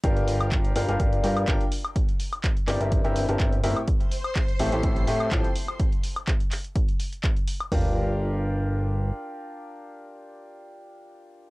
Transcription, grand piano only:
X:1
M:4/4
L:1/16
Q:"Swing 16ths" 1/4=125
K:Gdor
V:1 name="Grand piano"
[G,DFGBf]6 [G,DFGBf] [G,DFGBf] [G,DGB]2 [G,DFGBf]2 [DFGBg] z3 | z6 [G,CEGBd] [G,CEGBe]2 [G,CEGBe]2 [G,CEGBa] [G,CEGBe] z [A,,CEGBe] z | z6 [A,,CEGAe] [A,,CEGAe] [A,,CEGAe]2 [A,,CEGAe]2 [F,CEGAg] z3 | z16 |
[DFGBf]16- | [DFGBf]16 |]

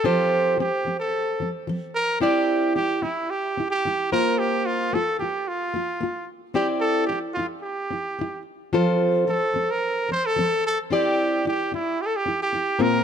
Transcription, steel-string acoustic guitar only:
X:1
M:4/4
L:1/8
Q:1/4=110
K:Cmix
V:1 name="Steel-string acoustic guitar"
[F,CFAc]2 [F,C] [F,C] z [F,C] [F,C] z | [CEGd]2 C [CE] z [CE] [CE] [B,FBc]- | [B,FBc]2 [B,F] [B,F] z [B,F] [B,F] z | [CEGd]2 C [CE] z [CE] [CE] z |
[F,CFAc]2 [F,C] [F,C] z [F,C] [F,C] z | [CEGd]2 [CE] [CE] z [CE] [CE] [B,,B,CFB] |]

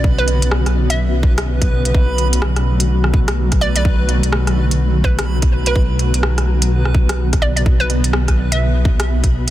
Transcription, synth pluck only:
X:1
M:4/4
L:1/16
Q:"Swing 16ths" 1/4=126
K:D
V:1 name="Synth pluck"
z B2 z4 e4 z4 z | z12 z2 d d | z8 z2 B2 z3 B- | B4- B z8 z d d |
z B2 z4 e4 z4 z |]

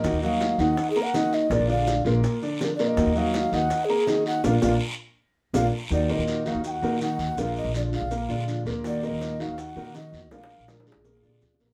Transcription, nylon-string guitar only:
X:1
M:4/4
L:1/8
Q:1/4=164
K:Ebm
V:1 name="Nylon-string guitar"
[E,B,EG] [B,EG]2 [B,EG] z2 [E,B,EG]2 | [F,A,=DF] [A,DF]2 [A,DF] z2 [F,A,DF]2 | [E,B,EG] [B,EG]2 [B,EG] z2 [E,B,EG]2 | [B,=DF] [B,DF] z4 [B,DF] z |
[E,B,EG]2 [E,B,EG] [B,EG] z [B,EG] [E,B,EG]2 | [F,A,=DF]2 [F,A,DF] [A,DF] z [A,DF] [F,A,DF]2 | [E,B,EG]2 [E,B,EG] [B,EG] z [B,EG] [E,B,EG]2 | [F,A,=DF]2 [F,A,DF] [A,DF] z [A,DF] [F,A,DF]2 |]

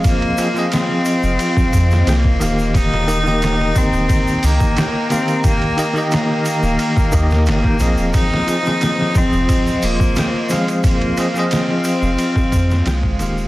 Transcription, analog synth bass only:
X:1
M:4/4
L:1/16
Q:1/4=89
K:Fm
V:1 name="Analog synth bass" clef=bass
z6 z F,,, z2 F,,2 C,,2 E,,,2- | E,,,6 z E,,, z2 D,, z4 z | z6 z E,,, z2 E,,2 G,,, z B,,, E,,, | z6 z F,,, z2 E,,, z4 z |
z6 z F,,, z2 F,,2 C,,2 E,,,2 |]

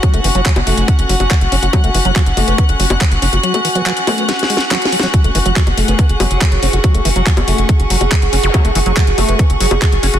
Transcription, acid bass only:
X:1
M:4/4
L:1/16
Q:1/4=141
K:F#m
V:1 name="Acid bass" clef=bass
F, A, E, F, F, z A,2 F, z F, z F, z C F | F, A, E, F, F, z A,2 F, z F, z F, z C F | F, A, E, F, F, z A,2 F, z G, z F, z F, F, | F, A, E, F, F, z A,2 F, z F, z F, z C F |
F, A, E, F, F, z A,2 F, z F, z F, z C F | F, A, E, F, F, z A,2 F, z F, z F, z C F |]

